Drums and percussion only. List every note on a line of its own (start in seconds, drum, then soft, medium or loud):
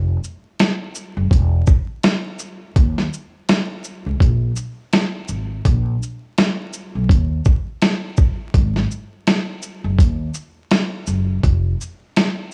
0.24 shaker soft
0.59 snare loud
0.59 closed hi-hat medium
0.95 shaker medium
1.31 kick medium
1.31 closed hi-hat medium
1.67 kick medium
1.67 shaker soft
2.03 snare loud
2.03 closed hi-hat medium
2.39 shaker medium
2.76 kick loud
2.76 closed hi-hat medium
2.98 snare soft
3.13 shaker soft
3.49 snare loud
3.49 closed hi-hat medium
3.84 shaker medium
4.20 kick medium
4.20 closed hi-hat medium
4.56 shaker soft
4.93 snare loud
4.93 closed hi-hat medium
5.28 shaker soft
5.65 kick medium
5.65 closed hi-hat medium
6.03 shaker soft
6.38 snare loud
6.38 closed hi-hat medium
6.73 shaker medium
7.09 kick medium
7.09 closed hi-hat medium
7.45 kick medium
7.45 shaker soft
7.82 snare loud
7.82 closed hi-hat medium
8.17 kick loud
8.17 shaker soft
8.54 kick loud
8.54 closed hi-hat medium
8.76 snare soft
8.91 shaker soft
9.27 snare loud
9.27 closed hi-hat medium
9.63 shaker medium
9.98 kick medium
9.98 closed hi-hat medium
10.34 shaker soft
10.71 snare loud
10.71 closed hi-hat medium
11.07 shaker medium
11.43 kick loud
11.43 closed hi-hat medium
11.81 shaker soft
12.16 snare loud
12.16 closed hi-hat medium